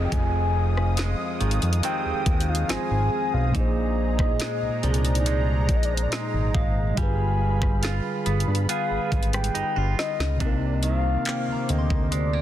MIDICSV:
0, 0, Header, 1, 9, 480
1, 0, Start_track
1, 0, Key_signature, -3, "minor"
1, 0, Tempo, 857143
1, 66, Time_signature, 4, 2, 24, 8
1, 6953, End_track
2, 0, Start_track
2, 0, Title_t, "Synth bell"
2, 0, Program_c, 0, 98
2, 546, Note_on_c, 0, 75, 52
2, 1639, Note_off_c, 0, 75, 0
2, 3664, Note_on_c, 0, 77, 77
2, 4123, Note_off_c, 0, 77, 0
2, 6304, Note_on_c, 0, 79, 69
2, 6452, Note_on_c, 0, 82, 53
2, 6600, Note_on_c, 0, 84, 56
2, 6953, Note_off_c, 0, 79, 0
2, 6953, Note_off_c, 0, 82, 0
2, 6953, Note_off_c, 0, 84, 0
2, 6953, End_track
3, 0, Start_track
3, 0, Title_t, "Analog synth pad"
3, 0, Program_c, 1, 89
3, 0, Note_on_c, 1, 68, 82
3, 0, Note_on_c, 1, 77, 73
3, 0, Note_on_c, 1, 87, 88
3, 1964, Note_off_c, 1, 87, 0
3, 1965, Note_off_c, 1, 77, 0
3, 1985, Note_on_c, 1, 63, 76
3, 1985, Note_on_c, 1, 82, 92
3, 3884, Note_off_c, 1, 68, 0
3, 3886, Note_off_c, 1, 63, 0
3, 3886, Note_off_c, 1, 82, 0
3, 3906, Note_on_c, 1, 77, 75
3, 3906, Note_on_c, 1, 83, 90
3, 3908, Note_on_c, 1, 68, 84
3, 5807, Note_off_c, 1, 77, 0
3, 5807, Note_off_c, 1, 83, 0
3, 5808, Note_off_c, 1, 68, 0
3, 5823, Note_on_c, 1, 70, 75
3, 5823, Note_on_c, 1, 86, 82
3, 5824, Note_on_c, 1, 72, 73
3, 6953, Note_off_c, 1, 70, 0
3, 6953, Note_off_c, 1, 72, 0
3, 6953, Note_off_c, 1, 86, 0
3, 6953, End_track
4, 0, Start_track
4, 0, Title_t, "Soft synth lead"
4, 0, Program_c, 2, 80
4, 29, Note_on_c, 2, 79, 71
4, 71, Note_on_c, 2, 80, 100
4, 79, Note_off_c, 2, 79, 0
4, 789, Note_off_c, 2, 80, 0
4, 1031, Note_on_c, 2, 79, 113
4, 1394, Note_on_c, 2, 77, 102
4, 1402, Note_off_c, 2, 79, 0
4, 1510, Note_on_c, 2, 80, 112
4, 1518, Note_off_c, 2, 77, 0
4, 1868, Note_on_c, 2, 77, 101
4, 1877, Note_off_c, 2, 80, 0
4, 1984, Note_off_c, 2, 77, 0
4, 1987, Note_on_c, 2, 75, 115
4, 2708, Note_on_c, 2, 74, 110
4, 2716, Note_off_c, 2, 75, 0
4, 3226, Note_on_c, 2, 75, 86
4, 3234, Note_off_c, 2, 74, 0
4, 3274, Note_on_c, 2, 74, 87
4, 3282, Note_off_c, 2, 75, 0
4, 3326, Note_on_c, 2, 72, 82
4, 3334, Note_off_c, 2, 74, 0
4, 3375, Note_on_c, 2, 74, 84
4, 3383, Note_off_c, 2, 72, 0
4, 3424, Note_on_c, 2, 75, 95
4, 3432, Note_off_c, 2, 74, 0
4, 3904, Note_on_c, 2, 80, 102
4, 3913, Note_off_c, 2, 75, 0
4, 4625, Note_off_c, 2, 80, 0
4, 4867, Note_on_c, 2, 77, 101
4, 5204, Note_off_c, 2, 77, 0
4, 5229, Note_on_c, 2, 79, 110
4, 5565, Note_off_c, 2, 79, 0
4, 5592, Note_on_c, 2, 75, 112
4, 5866, Note_on_c, 2, 77, 87
4, 5874, Note_off_c, 2, 75, 0
4, 5915, Note_on_c, 2, 75, 80
4, 5923, Note_off_c, 2, 77, 0
4, 5968, Note_on_c, 2, 74, 82
4, 5977, Note_off_c, 2, 75, 0
4, 6017, Note_on_c, 2, 75, 78
4, 6025, Note_off_c, 2, 74, 0
4, 6067, Note_off_c, 2, 75, 0
4, 6072, Note_on_c, 2, 77, 111
4, 6552, Note_on_c, 2, 75, 103
4, 6560, Note_off_c, 2, 77, 0
4, 6790, Note_on_c, 2, 74, 101
4, 6798, Note_off_c, 2, 75, 0
4, 6953, Note_off_c, 2, 74, 0
4, 6953, End_track
5, 0, Start_track
5, 0, Title_t, "Synth keys"
5, 0, Program_c, 3, 88
5, 0, Control_c, 3, 64, 127
5, 0, Note_on_c, 3, 53, 66
5, 0, Note_on_c, 3, 60, 66
5, 0, Note_on_c, 3, 65, 64
5, 0, Note_on_c, 3, 68, 63
5, 0, Note_on_c, 3, 75, 75
5, 1473, Note_off_c, 3, 53, 0
5, 1480, Note_off_c, 3, 60, 0
5, 1486, Note_off_c, 3, 65, 0
5, 1493, Note_off_c, 3, 68, 0
5, 1498, Note_on_c, 3, 53, 53
5, 1499, Note_off_c, 3, 75, 0
5, 1504, Note_on_c, 3, 60, 49
5, 1510, Note_on_c, 3, 65, 49
5, 1517, Note_on_c, 3, 68, 52
5, 1524, Note_on_c, 3, 72, 57
5, 1963, Note_on_c, 3, 46, 65
5, 1976, Note_on_c, 3, 58, 62
5, 1982, Note_off_c, 3, 53, 0
5, 1985, Note_off_c, 3, 60, 0
5, 1988, Note_off_c, 3, 65, 0
5, 1989, Note_on_c, 3, 63, 62
5, 1992, Note_off_c, 3, 68, 0
5, 1994, Control_c, 3, 64, 0
5, 1995, Note_off_c, 3, 72, 0
5, 2002, Note_on_c, 3, 68, 61
5, 2016, Note_on_c, 3, 72, 73
5, 2101, Control_c, 3, 64, 127
5, 3872, Note_off_c, 3, 46, 0
5, 3879, Note_off_c, 3, 58, 0
5, 3884, Note_on_c, 3, 55, 65
5, 3885, Note_off_c, 3, 63, 0
5, 3892, Note_off_c, 3, 68, 0
5, 3896, Note_on_c, 3, 50, 59
5, 3899, Note_off_c, 3, 72, 0
5, 3909, Note_on_c, 3, 65, 59
5, 3914, Control_c, 3, 64, 0
5, 3922, Note_on_c, 3, 68, 60
5, 3936, Note_on_c, 3, 71, 68
5, 4020, Control_c, 3, 64, 127
5, 5793, Note_off_c, 3, 55, 0
5, 5799, Note_off_c, 3, 50, 0
5, 5804, Note_on_c, 3, 48, 61
5, 5805, Note_off_c, 3, 65, 0
5, 5812, Note_off_c, 3, 68, 0
5, 5818, Note_on_c, 3, 60, 53
5, 5819, Note_off_c, 3, 71, 0
5, 5831, Note_on_c, 3, 58, 59
5, 5833, Control_c, 3, 64, 0
5, 5844, Note_on_c, 3, 63, 55
5, 5857, Note_on_c, 3, 70, 66
5, 5939, Control_c, 3, 64, 127
5, 6953, Note_off_c, 3, 48, 0
5, 6953, Note_off_c, 3, 58, 0
5, 6953, Note_off_c, 3, 60, 0
5, 6953, Note_off_c, 3, 63, 0
5, 6953, Note_off_c, 3, 70, 0
5, 6953, End_track
6, 0, Start_track
6, 0, Title_t, "Clean electric guitar"
6, 0, Program_c, 4, 27
6, 0, Note_on_c, 4, 41, 87
6, 62, Note_off_c, 4, 41, 0
6, 69, Note_on_c, 4, 41, 92
6, 547, Note_on_c, 4, 56, 69
6, 786, Note_on_c, 4, 51, 63
6, 1026, Note_off_c, 4, 51, 0
6, 1028, Note_on_c, 4, 51, 66
6, 1029, Note_off_c, 4, 56, 0
6, 1031, Note_on_c, 4, 56, 70
6, 1034, Note_on_c, 4, 60, 72
6, 1505, Note_off_c, 4, 56, 0
6, 1507, Note_on_c, 4, 56, 68
6, 1986, Note_on_c, 4, 46, 93
6, 1988, Note_off_c, 4, 41, 0
6, 2038, Note_off_c, 4, 60, 0
6, 2464, Note_off_c, 4, 56, 0
6, 2466, Note_on_c, 4, 56, 65
6, 2703, Note_off_c, 4, 51, 0
6, 2705, Note_on_c, 4, 53, 64
6, 2943, Note_off_c, 4, 53, 0
6, 2945, Note_on_c, 4, 53, 68
6, 2947, Note_off_c, 4, 56, 0
6, 2949, Note_on_c, 4, 56, 65
6, 2952, Note_on_c, 4, 63, 72
6, 3424, Note_off_c, 4, 56, 0
6, 3426, Note_on_c, 4, 56, 65
6, 3904, Note_off_c, 4, 53, 0
6, 3906, Note_off_c, 4, 46, 0
6, 3906, Note_on_c, 4, 55, 88
6, 3957, Note_off_c, 4, 63, 0
6, 4386, Note_on_c, 4, 65, 66
6, 4624, Note_off_c, 4, 56, 0
6, 4626, Note_on_c, 4, 59, 63
6, 4860, Note_off_c, 4, 59, 0
6, 4863, Note_off_c, 4, 65, 0
6, 4866, Note_on_c, 4, 59, 70
6, 4870, Note_on_c, 4, 65, 64
6, 4873, Note_on_c, 4, 68, 72
6, 5344, Note_off_c, 4, 65, 0
6, 5346, Note_on_c, 4, 63, 66
6, 5466, Note_off_c, 4, 63, 0
6, 5466, Note_on_c, 4, 65, 56
6, 5826, Note_on_c, 4, 48, 81
6, 5828, Note_off_c, 4, 65, 0
6, 5830, Note_on_c, 4, 62, 68
6, 5866, Note_off_c, 4, 55, 0
6, 5874, Note_off_c, 4, 59, 0
6, 5878, Note_off_c, 4, 68, 0
6, 6066, Note_on_c, 4, 51, 63
6, 6308, Note_off_c, 4, 62, 0
6, 6310, Note_on_c, 4, 58, 64
6, 6783, Note_off_c, 4, 58, 0
6, 6786, Note_on_c, 4, 56, 62
6, 6907, Note_off_c, 4, 56, 0
6, 6907, Note_on_c, 4, 58, 50
6, 6953, Note_off_c, 4, 48, 0
6, 6953, Note_off_c, 4, 51, 0
6, 6953, Note_off_c, 4, 58, 0
6, 6953, End_track
7, 0, Start_track
7, 0, Title_t, "Analog synth bass"
7, 0, Program_c, 5, 38
7, 69, Note_on_c, 5, 29, 114
7, 645, Note_off_c, 5, 29, 0
7, 790, Note_on_c, 5, 32, 98
7, 896, Note_off_c, 5, 32, 0
7, 910, Note_on_c, 5, 41, 95
7, 1016, Note_off_c, 5, 41, 0
7, 1151, Note_on_c, 5, 39, 51
7, 1198, Note_off_c, 5, 39, 0
7, 1268, Note_on_c, 5, 39, 88
7, 1482, Note_off_c, 5, 39, 0
7, 1509, Note_on_c, 5, 32, 53
7, 1557, Note_off_c, 5, 32, 0
7, 1630, Note_on_c, 5, 32, 89
7, 1736, Note_off_c, 5, 32, 0
7, 1870, Note_on_c, 5, 35, 103
7, 1976, Note_off_c, 5, 35, 0
7, 1988, Note_on_c, 5, 34, 111
7, 2418, Note_off_c, 5, 34, 0
7, 2589, Note_on_c, 5, 36, 51
7, 2637, Note_off_c, 5, 36, 0
7, 2708, Note_on_c, 5, 36, 100
7, 3187, Note_on_c, 5, 34, 97
7, 3196, Note_off_c, 5, 36, 0
7, 3402, Note_off_c, 5, 34, 0
7, 3549, Note_on_c, 5, 32, 85
7, 3655, Note_off_c, 5, 32, 0
7, 3667, Note_on_c, 5, 32, 98
7, 3882, Note_off_c, 5, 32, 0
7, 3907, Note_on_c, 5, 31, 105
7, 4484, Note_off_c, 5, 31, 0
7, 4629, Note_on_c, 5, 31, 97
7, 4735, Note_off_c, 5, 31, 0
7, 4747, Note_on_c, 5, 43, 102
7, 4854, Note_off_c, 5, 43, 0
7, 4989, Note_on_c, 5, 32, 51
7, 5036, Note_off_c, 5, 32, 0
7, 5108, Note_on_c, 5, 32, 91
7, 5322, Note_off_c, 5, 32, 0
7, 5349, Note_on_c, 5, 31, 53
7, 5397, Note_off_c, 5, 31, 0
7, 5470, Note_on_c, 5, 31, 99
7, 5576, Note_off_c, 5, 31, 0
7, 5710, Note_on_c, 5, 37, 96
7, 5816, Note_off_c, 5, 37, 0
7, 5827, Note_on_c, 5, 36, 101
7, 6257, Note_off_c, 5, 36, 0
7, 6430, Note_on_c, 5, 38, 48
7, 6477, Note_off_c, 5, 38, 0
7, 6550, Note_on_c, 5, 38, 97
7, 6953, Note_off_c, 5, 38, 0
7, 6953, End_track
8, 0, Start_track
8, 0, Title_t, "Downlifter"
8, 0, Program_c, 6, 103
8, 0, Note_on_c, 6, 60, 86
8, 1987, Note_off_c, 6, 60, 0
8, 6953, End_track
9, 0, Start_track
9, 0, Title_t, "Drums"
9, 67, Note_on_c, 9, 36, 109
9, 68, Note_on_c, 9, 42, 71
9, 123, Note_off_c, 9, 36, 0
9, 124, Note_off_c, 9, 42, 0
9, 434, Note_on_c, 9, 37, 67
9, 490, Note_off_c, 9, 37, 0
9, 544, Note_on_c, 9, 42, 70
9, 555, Note_on_c, 9, 38, 113
9, 600, Note_off_c, 9, 42, 0
9, 611, Note_off_c, 9, 38, 0
9, 787, Note_on_c, 9, 42, 39
9, 843, Note_off_c, 9, 42, 0
9, 847, Note_on_c, 9, 42, 51
9, 903, Note_off_c, 9, 42, 0
9, 907, Note_on_c, 9, 42, 59
9, 963, Note_off_c, 9, 42, 0
9, 967, Note_on_c, 9, 42, 65
9, 1023, Note_off_c, 9, 42, 0
9, 1026, Note_on_c, 9, 42, 88
9, 1082, Note_off_c, 9, 42, 0
9, 1266, Note_on_c, 9, 36, 85
9, 1266, Note_on_c, 9, 42, 58
9, 1322, Note_off_c, 9, 36, 0
9, 1322, Note_off_c, 9, 42, 0
9, 1346, Note_on_c, 9, 42, 59
9, 1402, Note_off_c, 9, 42, 0
9, 1427, Note_on_c, 9, 42, 62
9, 1483, Note_off_c, 9, 42, 0
9, 1509, Note_on_c, 9, 42, 61
9, 1513, Note_on_c, 9, 38, 123
9, 1565, Note_off_c, 9, 42, 0
9, 1569, Note_off_c, 9, 38, 0
9, 1986, Note_on_c, 9, 36, 107
9, 1986, Note_on_c, 9, 42, 72
9, 2042, Note_off_c, 9, 36, 0
9, 2042, Note_off_c, 9, 42, 0
9, 2346, Note_on_c, 9, 36, 91
9, 2351, Note_on_c, 9, 37, 66
9, 2402, Note_off_c, 9, 36, 0
9, 2407, Note_off_c, 9, 37, 0
9, 2462, Note_on_c, 9, 42, 70
9, 2472, Note_on_c, 9, 38, 117
9, 2518, Note_off_c, 9, 42, 0
9, 2528, Note_off_c, 9, 38, 0
9, 2706, Note_on_c, 9, 42, 40
9, 2762, Note_off_c, 9, 42, 0
9, 2766, Note_on_c, 9, 42, 50
9, 2822, Note_off_c, 9, 42, 0
9, 2826, Note_on_c, 9, 42, 54
9, 2882, Note_off_c, 9, 42, 0
9, 2885, Note_on_c, 9, 42, 66
9, 2941, Note_off_c, 9, 42, 0
9, 2946, Note_on_c, 9, 42, 97
9, 3002, Note_off_c, 9, 42, 0
9, 3185, Note_on_c, 9, 36, 83
9, 3185, Note_on_c, 9, 42, 58
9, 3241, Note_off_c, 9, 36, 0
9, 3241, Note_off_c, 9, 42, 0
9, 3265, Note_on_c, 9, 42, 56
9, 3321, Note_off_c, 9, 42, 0
9, 3346, Note_on_c, 9, 42, 59
9, 3402, Note_off_c, 9, 42, 0
9, 3427, Note_on_c, 9, 42, 62
9, 3431, Note_on_c, 9, 38, 118
9, 3483, Note_off_c, 9, 42, 0
9, 3487, Note_off_c, 9, 38, 0
9, 3665, Note_on_c, 9, 36, 97
9, 3721, Note_off_c, 9, 36, 0
9, 3905, Note_on_c, 9, 36, 107
9, 3905, Note_on_c, 9, 42, 76
9, 3961, Note_off_c, 9, 36, 0
9, 3961, Note_off_c, 9, 42, 0
9, 4266, Note_on_c, 9, 36, 90
9, 4272, Note_on_c, 9, 37, 66
9, 4322, Note_off_c, 9, 36, 0
9, 4328, Note_off_c, 9, 37, 0
9, 4383, Note_on_c, 9, 42, 70
9, 4393, Note_on_c, 9, 38, 109
9, 4439, Note_off_c, 9, 42, 0
9, 4449, Note_off_c, 9, 38, 0
9, 4625, Note_on_c, 9, 42, 57
9, 4681, Note_off_c, 9, 42, 0
9, 4705, Note_on_c, 9, 42, 57
9, 4761, Note_off_c, 9, 42, 0
9, 4787, Note_on_c, 9, 42, 54
9, 4843, Note_off_c, 9, 42, 0
9, 4867, Note_on_c, 9, 42, 91
9, 4923, Note_off_c, 9, 42, 0
9, 5106, Note_on_c, 9, 36, 90
9, 5107, Note_on_c, 9, 42, 40
9, 5162, Note_off_c, 9, 36, 0
9, 5163, Note_off_c, 9, 42, 0
9, 5166, Note_on_c, 9, 42, 52
9, 5222, Note_off_c, 9, 42, 0
9, 5226, Note_on_c, 9, 42, 62
9, 5232, Note_on_c, 9, 37, 103
9, 5282, Note_off_c, 9, 42, 0
9, 5286, Note_on_c, 9, 42, 70
9, 5288, Note_off_c, 9, 37, 0
9, 5342, Note_off_c, 9, 42, 0
9, 5349, Note_on_c, 9, 42, 58
9, 5405, Note_off_c, 9, 42, 0
9, 5594, Note_on_c, 9, 38, 98
9, 5650, Note_off_c, 9, 38, 0
9, 5714, Note_on_c, 9, 38, 102
9, 5770, Note_off_c, 9, 38, 0
9, 5826, Note_on_c, 9, 36, 107
9, 5826, Note_on_c, 9, 42, 67
9, 5882, Note_off_c, 9, 36, 0
9, 5882, Note_off_c, 9, 42, 0
9, 6063, Note_on_c, 9, 42, 77
9, 6119, Note_off_c, 9, 42, 0
9, 6302, Note_on_c, 9, 42, 68
9, 6313, Note_on_c, 9, 39, 106
9, 6358, Note_off_c, 9, 42, 0
9, 6369, Note_off_c, 9, 39, 0
9, 6547, Note_on_c, 9, 42, 60
9, 6603, Note_off_c, 9, 42, 0
9, 6666, Note_on_c, 9, 36, 95
9, 6722, Note_off_c, 9, 36, 0
9, 6787, Note_on_c, 9, 42, 87
9, 6843, Note_off_c, 9, 42, 0
9, 6953, End_track
0, 0, End_of_file